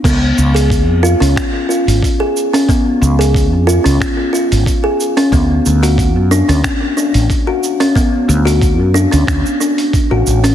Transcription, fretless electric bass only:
\new Staff \with { instrumentName = "Fretless electric bass" } { \clef bass \time 4/4 \tempo 4 = 91 cis,8 cis,8. eis,8 cis,16 r8. gis,,16 r4 | r8 cis,8. eis,8 cis,16 r8. gis,,16 r4 | d,8 d,8. fis,8 d,16 r8. a,,16 r4 | r8 d,8. fis,8 d,16 d,16 r4 a,,16 a,,8 | }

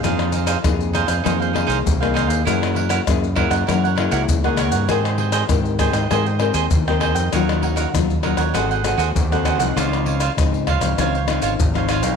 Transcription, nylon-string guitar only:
\new Staff \with { instrumentName = "Nylon-string guitar" } { \time 4/4 \key f \minor \tempo 4 = 98 << { <bes ees' aes'>8 r8 <bes ees' aes'>8. r16 <bes ees' aes'>8 <bes ees' aes'>8. <bes ees' aes'>8. | <bes fes' aes'>4 <bes fes' aes'>16 r16 <bes fes' aes'>8 <bes fes' aes'>16 r16 <bes fes' aes'>8. <bes fes' aes'>8. | <c' g' bes'>4 <c' g' bes'>8 <c' g' bes'>16 r16 <c' g' bes'>16 r16 <c' g' bes'>8 r16 <c' g' bes'>8. | <ges des' f'>4 <ges des' f'>16 r16 <ges des' f'>8 <c' ges' a'>8 <c' ges' a'>8 r16 <c' ges' a'>8 <f c' ees'>16~ |
<f c' ees'>8. r16 <f c' ees'>8 r16 <f c' ees'>16 <f c' ees'>16 r16 <f c' ees'>8 r16 <f c' ees'>8. | } \\ { f4 c4 f4 c4 | ges4 des4 ges4 des4 | aes4 ees4 aes4 ees4 | ees4 bes,4 aes4 ees4 |
des4 aes,4 des4 aes,4 | } >> }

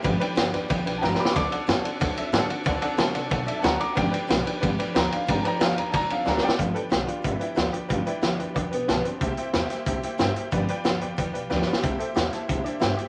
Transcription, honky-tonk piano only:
\new Staff \with { instrumentName = "Honky-tonk piano" } { \time 4/4 \key g \mixolydian \tempo 4 = 183 <b' d'' g''>8 <b' d'' g''>8 <b' d'' g''>8 <b' d'' g''>8 <b' d'' g''>8 <b' d'' g''>8 <b' d'' g''>8 <b' d'' g''>8 | <a' d'' fis''>8 <a' d'' fis''>8 <a' d'' fis''>8 <a' d'' fis''>8 <a' d'' fis''>8 <a' d'' e''>8 <a' d'' fis''>8 <a' d'' fis''>8 | <a' d'' fis''>8 <a' d'' fis''>8 <a' d'' a''>8 <a' d'' fis''>8 <a' d'' fis''>8 <a' d'' e''>8 <a' d'' fis''>8 <a' d'' fis''>8 | <b' d'' g''>8 <b' d'' g''>8 <b' d'' g''>8 <b' d'' g''>8 <b' d'' g''>8 <b' d'' g''>8 <b' d'' g''>8 <b' d'' g''>8 |
<b' d'' g''>8 <b' d'' g''>8 <b' d'' a''>8 <b' d'' g''>8 <a' d'' fis''>8 <a' d'' fis''>8 <a' d'' fis''>8 <a' d'' fis''>8 | <b' d'' g''>8 <b' d'' g''>8 <b' d'' g''>8 <b' d'' g''>8 <b' d'' e''>8 <b' d'' g''>8 <b' d'' g''>8 <b' d'' g''>8 | <b' d'' g''>8 <b' d'' g''>8 <b' d'' g''>8 <b' d'' g''>8 <b' d'' g''>8 <b' d'' g''>8 <b' d'' a''>8 <b' d'' g''>8 | <c'' e'' g''>8 <c'' e'' g''>8 <c'' e'' g''>8 <c'' e'' g''>8 <c'' e'' g''>8 <c'' e'' g''>8 <c'' e'' g''>8 <c'' e'' g''>8 |
<b' d'' g''>8 <b' d'' g''>8 <b' d'' g''>8 <b' d'' g''>8 <b' d'' g''>8 <b' d'' g''>8 <b' d'' g''>8 <b' d'' g''>8 | <c'' e'' g''>8 <c'' e'' g''>8 <c'' e'' g''>8 <c'' e'' a''>8 <c'' e'' g''>8 <c'' e'' g''>8 <c'' e'' g''>8 <c'' e'' g''>8 | }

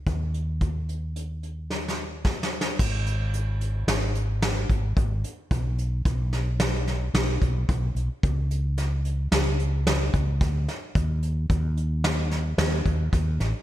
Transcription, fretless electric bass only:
\new Staff \with { instrumentName = "Fretless electric bass" } { \clef bass \time 5/4 \key des \mixolydian \tempo 4 = 110 ees,1~ ees,4 | aes,,2 aes,,4. aes,,8 aes,,8 r8 | ces,4 ces,2 ces,8 ces,8 ces,8 ces,16 r16 | des,2 des,4. des,8 d,8 r8 |
ees,4 ees,2 ees,8 ees,8 ees,8 a,,16 r16 | }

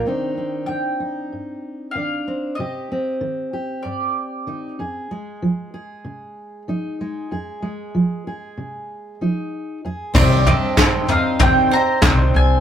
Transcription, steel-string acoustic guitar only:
\new Staff \with { instrumentName = "Steel-string acoustic guitar" } { \clef bass \time 4/4 \key c \minor \tempo 4 = 95 << { <ees c' d' ees'>8 c'4 ees'4. d'8 c'8 | g'8 c'4 g'4. ees'8 aes'8 | aes4 aes'4. ees'8 aes8 aes'8 | aes4 aes'4. ees'4 aes'8 |
r1 | } \\ { c4 ees4 g,4 ees4 | c4 ees4 g,4 ees8 f,8~ | f,8 f4 c4 f4 f,8~ | f,8 f4 c4 f4 f,8 |
r1 | } >> }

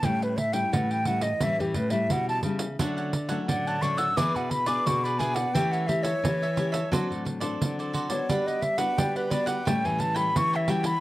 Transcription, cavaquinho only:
\new Staff \with { instrumentName = "Cavaquinho" } { \time 4/4 \key a \mixolydian \tempo 4 = 87 r1 | <d' a' cis'' fis''>16 <a' cis'' fis''>16 r16 <a' cis'' fis''>8 <a' cis'' fis''>16 <d' a' cis'' fis''>16 <a' cis'' fis''>16 <e' gis' b' d''>8 r16 <gis' b' d''>8 <gis' b' d''>16 <e' gis' b' d''>16 <gis' b' d''>16 | <g' a' cis'' e''>16 <a' cis'' e''>16 r16 <a' cis'' e''>8 <a' cis'' e''>16 <g' a' cis'' e''>16 <a' cis'' e''>16 <fis' a' c'' d''>8 r16 <a' c'' d''>8 <a' c'' d''>16 <fis' a' c'' d''>16 <a' c'' d''>16 | <d' g' b' fis''>16 <g' b' fis''>16 r16 <g' b' fis''>8 <g' b' fis''>16 <d' g' b' fis''>16 <g' b' fis''>16 <g' a' cis'' g''>8 r16 <a' cis'' g''>8 <a' cis'' g''>16 <g' a' cis'' g''>16 <a' cis'' g''>16 | }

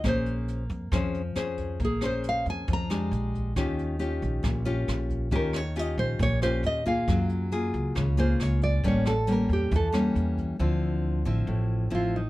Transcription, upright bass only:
\new Staff \with { instrumentName = "Upright bass" } { \clef bass \time 4/4 \key bes \minor \tempo 4 = 136 bes,,4. f,8 f,4 f,4 | bes,,4. f,8 f,4 bes,,4 | ees,4. bes,,8 bes,,4 bes,,4 | ees,4. bes,,8 bes,,4 ees,4 |
ges,4. des,8 des,4 des,4 | a,,4. e,8 e,4 e,4 | \key d \minor d,4. a,,8 a,,4 a,,4 | }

